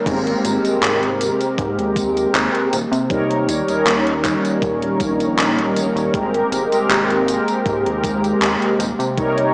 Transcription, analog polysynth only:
0.06 G#3 C4 G4 A#4
0.63 G#3 C4 G4 A#4
3.09 G3 D#4 A#4 C#5
3.66 G3 C#4 D#4 A#4
6.13 G#3 C4 G4 A#4
6.71 G#3 C4 G4 A#4
9.17 G3 D#4 A#4 C#5

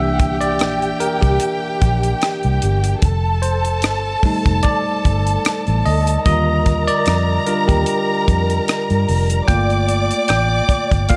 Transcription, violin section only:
Already playing: G4 G5
3.03 A4 A5
6.26 A#4 A#5
9.49 D5 D6

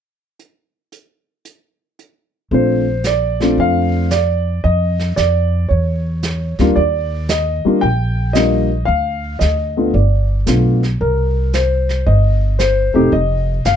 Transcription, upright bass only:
2.51 A#1
3.58 F2
4.64 F2
5.17 F2
5.71 E2
6.59 D2
6.76 D#2
7.65 muted upright bass stroke
7.83 A#1
8.88 D2
9.41 D2
9.94 G1
10.47 B1
11.01 C2
12.06 G1
12.95 E1
13.12 F1
13.65 F#1

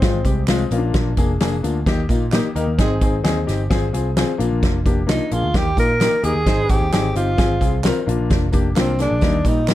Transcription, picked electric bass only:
0.02 G#1
0.25 C2
0.71 A#1
0.94 A#1
1.17 F1
1.41 F1
1.63 D2
1.86 D#2
2.09 A#2
2.56 D#2
2.67 D#2
2.79 G#1
3.01 G#1
3.24 D#2
3.48 G1
3.71 G#1
3.94 C2
4.39 A#1
4.51 A#1
4.63 F1
4.86 F1
5.08 C2
5.32 A#1
5.43 D2
5.54 D#2
5.77 A#2
6.24 D#2
6.35 D#2
6.46 G#1
6.69 G#1
6.81 D#2
6.92 G#1
7.15 G1
7.38 G#1
7.61 C2
8.07 A#1
8.19 A#1
8.31 F1
8.53 F1
8.77 C2
9.11 A#1
9.22 D#2
9.45 A#2

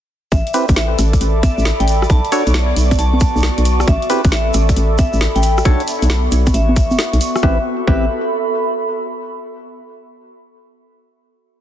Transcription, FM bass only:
0.32 A1
0.69 A1
0.99 A1
1.21 A1
1.58 A1
1.80 A1
2.10 B1
2.47 B1
2.76 B1
2.99 B1
3.36 B1
3.58 B1
3.88 A1
4.25 A1
4.54 A1
4.77 A1
5.13 A1
5.36 A1
5.65 B1
6.02 B1
6.32 B1
6.54 A1
6.91 F#1
7.13 B1
7.43 A1
7.88 A1

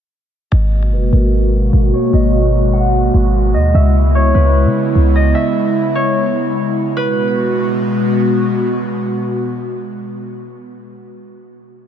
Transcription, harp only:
0.52 D#5
0.93 B4
1.12 A#4
1.93 C#5
2.14 D#5
2.73 F#5
3.54 D#5
3.75 E5
4.15 C#5
4.34 B4
5.16 D#5
5.35 E5
5.95 C#5
6.97 B4

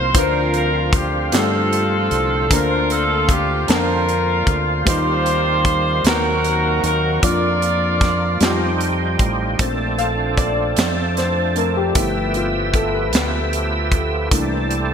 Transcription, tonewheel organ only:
Already playing: D#3 F3 A#3 C4 F4
0.15 D3 C4 F4
2.51 A#3 C4
4.86 D#3 G3 A#3 C4
6.05 F#3 C4 F#4
7.24 F3 A#3 D4
8.42 G3 C4 D#4 G4
9.60 F3 A3 C4 D4 A4
11.95 A3 B3 G4 E5
14.31 E3 G3 C4 D4 A4

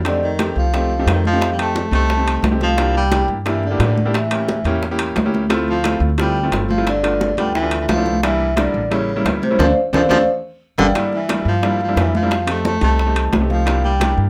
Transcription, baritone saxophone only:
0.05 D3
0.24 D#3
0.58 F3
1.10 D#3
1.27 F3
1.52 G3
1.61 A3
1.95 A3
2.63 F3
2.97 G3
3.48 E3
3.65 D3
4.16 E3
5.70 F3
6.20 G3
6.69 F3
6.87 D3
7.38 G3
7.55 E3
7.81 E3
7.88 F3
8.23 E3
8.57 D3
8.91 C#3
9.42 C3
9.59 F3
9.94 F3
10.10 F3
10.79 D3
10.98 D3
11.15 E3
11.48 F3
11.83 F3
12.00 E3
12.16 F3
12.50 A3
12.67 A3
12.84 A3
13.51 F3
13.85 G3

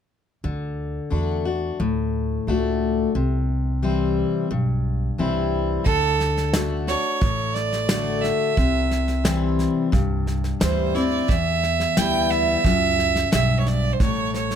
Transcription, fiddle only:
5.85 A4
6.88 C#5
7.55 D5
8.22 E5
10.61 C5
10.95 D5
11.29 E5
11.98 G5
12.31 E5
13.33 E5
13.60 C#5
13.68 D5
13.93 C5
14.02 C#5
14.36 C#5

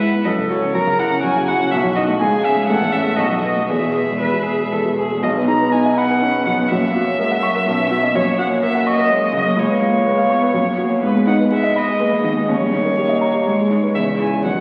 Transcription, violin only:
0.00 E5
0.24 D#5
0.49 C#5
0.75 A#5
0.99 F#5
1.23 G#5
1.48 F#5
1.71 E5
1.95 D#5
2.20 G#5
2.45 E5
2.68 F#5
2.92 E5
3.17 D#5
3.42 D#5
3.70 E5
5.23 D#5
5.47 A#5
5.72 G#5
5.98 F#5
6.46 F#5
6.71 E5
8.15 C#5
8.39 F#5
8.62 E5
8.88 D#5
9.35 D#5
9.59 C#5
11.03 B4
11.27 F#5
11.53 E5
11.77 D#5
12.24 D#5
12.47 C#5
13.95 E5
14.21 G#5
14.45 F#5

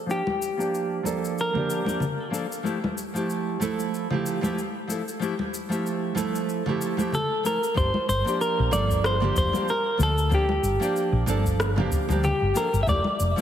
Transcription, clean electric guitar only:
Already playing: A4
0.11 G4
1.41 A#4
7.15 A4
7.46 A#4
7.77 C5
8.09 C5
8.41 A#4
8.73 D5
9.06 C5
9.38 C5
9.70 A#4
10.03 A4
10.35 G4
12.24 G4
12.57 A#4
12.83 E5
12.89 D5

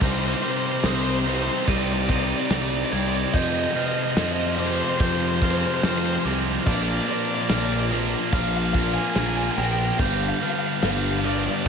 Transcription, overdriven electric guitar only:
0.03 C5
0.12 C5
0.19 C5
0.26 C5
0.34 C5
0.42 C5
0.50 C5
0.57 C5
0.66 C5
0.72 C5
0.81 C5
0.88 C5
0.95 C5
1.04 C5
1.11 C5
1.19 C5
1.27 C5
1.35 C5
1.42 C5
1.50 C5
1.59 C5
1.66 C5 D5
1.76 D5
1.84 D5
1.92 D5
2.00 D5
2.08 D5
2.15 D5
2.22 D5
2.31 D5
2.39 D5
2.46 D5
2.54 D5
2.61 D5
2.69 D5
2.77 D5
2.85 D5
2.93 D5
3.00 D5
3.08 D5
3.15 D5
3.24 D5
3.32 D5 D#5
3.43 D#5
3.49 D#5
3.55 D#5
3.64 D#5
3.71 D#5
3.79 D#5
3.86 D#5
3.94 D#5
4.02 D#5
4.10 D#5
4.17 D#5
4.23 D#5
4.32 D#5
4.40 D#5
4.47 D#5
4.55 C5 D#5
4.67 C5
4.74 C5
4.81 C5
4.89 C5
4.98 C5
5.05 C5
5.13 C5
5.21 C5
5.28 C5
5.36 C5
5.44 C5
5.51 C5
5.59 C5
5.66 C5
5.74 C5
5.82 C5
5.89 C5
5.98 C5
6.05 C5
6.14 C5
6.66 D5
6.75 D5
6.82 D5
6.89 D5
6.97 D5
7.04 D5
7.11 D5
7.19 D5
7.27 D5
7.34 D5
7.41 D5
7.50 D5
7.58 D5
7.65 D5
7.73 D5
7.80 D5
8.33 F5
8.41 F5
8.48 F5
8.56 F5
8.65 F5
8.73 F5
8.82 F5
8.89 F5
8.94 G#5
9.02 G#5
9.10 G#5
9.19 G#5
9.27 G#5
9.36 G#5
9.43 G#5
9.51 G#5
9.57 G5
9.64 G5
9.71 G5
9.79 G5
9.86 G5
9.94 G5
9.98 F5
10.06 F5
10.13 F5
10.21 F5
10.29 F5
10.36 F5
10.44 F5
10.50 F5
10.59 F5
10.67 F5
10.74 F5
10.82 F5
10.89 F5
10.97 F5
11.04 F5
11.11 F5
11.19 F5
11.24 D5
11.31 D5
11.39 D5
11.46 D5
11.54 D5
11.61 D5

